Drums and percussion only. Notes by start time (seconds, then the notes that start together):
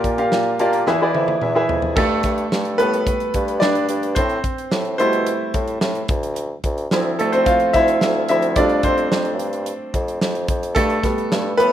0.04 kick, closed hi-hat
0.18 closed hi-hat
0.32 snare
0.59 closed hi-hat
0.73 closed hi-hat
0.87 snare
1.15 high tom
1.28 high tom
1.42 mid tom
1.69 floor tom
1.82 floor tom
1.96 kick, crash
2.23 kick, snare, closed hi-hat
2.38 closed hi-hat
2.52 snare
2.65 closed hi-hat
2.80 closed hi-hat
2.94 closed hi-hat
3.07 kick, closed hi-hat
3.20 closed hi-hat
3.34 kick, closed hi-hat
3.48 closed hi-hat
3.62 snare
3.75 closed hi-hat
3.89 closed hi-hat
4.03 closed hi-hat
4.16 kick, closed hi-hat
4.30 closed hi-hat
4.44 kick, closed hi-hat
4.58 closed hi-hat
4.71 snare
4.85 closed hi-hat
5.00 closed hi-hat
5.13 closed hi-hat
5.27 closed hi-hat
5.54 kick, closed hi-hat
5.68 closed hi-hat
5.81 snare
5.95 closed hi-hat
6.08 kick, closed hi-hat
6.23 closed hi-hat
6.36 closed hi-hat
6.64 kick, closed hi-hat
6.78 closed hi-hat
6.91 snare
7.19 closed hi-hat
7.33 closed hi-hat
7.46 kick, closed hi-hat
7.60 closed hi-hat
7.74 kick, closed hi-hat
7.88 closed hi-hat
8.01 snare
8.29 closed hi-hat
8.42 closed hi-hat
8.56 kick, closed hi-hat
8.69 closed hi-hat
8.83 kick, closed hi-hat
8.98 closed hi-hat
9.12 snare
9.25 closed hi-hat
9.39 closed hi-hat
9.53 closed hi-hat
9.66 closed hi-hat
9.94 kick, closed hi-hat
10.08 closed hi-hat
10.21 snare
10.35 closed hi-hat
10.48 kick, closed hi-hat
10.63 closed hi-hat
10.76 kick, closed hi-hat
10.90 closed hi-hat
11.03 kick, snare, closed hi-hat
11.18 closed hi-hat
11.32 snare
11.60 closed hi-hat